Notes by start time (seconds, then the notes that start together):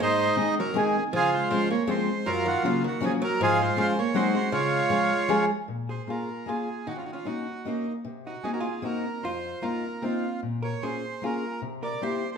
0.00 G#2 G#3 D#4 C5
0.36 D#3 G#3 C4 D#4 G#4
0.59 F#3 A#4
0.74 D#3 G#3 C4 D#4 G#4
1.13 C#3 F3 F4 G#4
1.32 G#3 C5
1.50 F3 G#3 C4 C#4 F4 C5
1.70 A#3 C#5
1.87 F3 G#3 C4 C#4 F4 C5
2.26 F#2 F#3 F4 A#4
2.46 D#3 F#4
2.63 C#3 F#3 A#3 C#4 F4 F#4
2.84 D#3 F#4
3.00 F3 F#3 A#3 C#4 F4 F#4
3.05 G#4
3.22 F#3 A#4
3.40 G#2 F3 F4 G#4
3.61 G#3 C5
3.76 F3 G#3 C#4 F4 G#4 C5
3.99 A#3 C#5
4.14 F#3 G#3 C4 D#4 F#4 C5
4.35 G#3 C5
4.52 C#3 G#3 F4 C#5
4.90 F3 G#3 C#4 F4 G#4
5.28 F3 G#3 C#4 F4 G#4
5.68 A#2
5.89 G#4 C5
6.07 A#3 C#4 F4 G#4 A#4
6.46 A#3 C#4 F4 G#4
6.87 D#3 D#4 F#4
6.96 C#4 F4
7.04 D#4 F#4
7.12 C#4 F4
7.25 A#3 C#4 D#4 F#4
7.65 A#3 C#4 D#4 F#4
8.05 C3
8.26 D#4 F#4
8.43 A#3 C4 D#4 F#4 G#4
8.53 F#4 A#4
8.59 F4 G#4
8.82 A#3 C4 D#4 F#4 A#4
9.23 F2 F4 C5
9.62 A#3 C4 D#4 F4 A#4
10.02 A#3 C4 D#4 F4
10.43 A#2
10.62 A#4 C#5
10.82 A#3 C#4 F4 G#4 C5
11.22 A#3 C#4 F4 G#4 A#4
11.62 C3
11.83 A#4 D5
12.01 A#3 C4 E4 G4 C5
12.32 C5